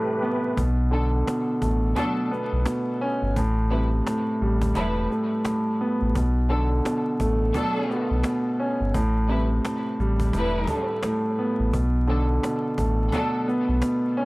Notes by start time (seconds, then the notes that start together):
Already playing: A2 C3 E3 G3 A3 G4 B4
0.22 B3
0.57 B1 B2, cajon bass
0.91 D3 F#3 D4 A4
1.27 B2, cajon slap
1.62 A1 A3, cajon bass
1.96 B2 F#3 D4 A4, cajon bass, cajon slap
2.31 B3, cajon slap
2.53 B1
2.65 B2, cajon slap
3.01 C#4
3.22 G1
3.36 A1 A2, cajon bass
3.70 C3 G3 E4 B4
4.07 A2, cajon slap
4.41 A1 G3
4.62 cajon bass
4.75 E1 A2 G3 E4 B4, cajon bass, cajon slap
5.11 A3, cajon slap
5.45 A2, cajon slap
5.81 B3
6.01 A1
6.15 B1 B2, cajon bass
6.49 D3 F#3 D4 A4
6.85 B2, cajon slap
7.20 A1 A3, cajon bass
7.54 B2 F#3 D4 A4, cajon bass, cajon slap
7.90 B3, cajon slap
8.11 B1
8.23 B2, cajon slap
8.60 C#4
8.81 G1
8.94 A1 A2, cajon bass
9.28 C3 G3 E4 B4
9.65 A2, cajon slap
9.99 A1 G3, cajon slap
10.20 cajon bass
10.33 E1 A2 G3 E4 B4, cajon bass, cajon slap
10.67 A3, cajon bass
11.03 A2, cajon slap
11.39 B3
11.59 A1
11.73 B1 B2, cajon bass
12.07 D3 F#3 D4 A4
12.43 B2, cajon slap
12.78 A1 A3, cajon bass
13.12 B2 F#3 D4 A4, cajon bass, cajon slap
13.48 B3, cajon slap
13.69 B1
13.82 B2, cajon slap
14.17 C#4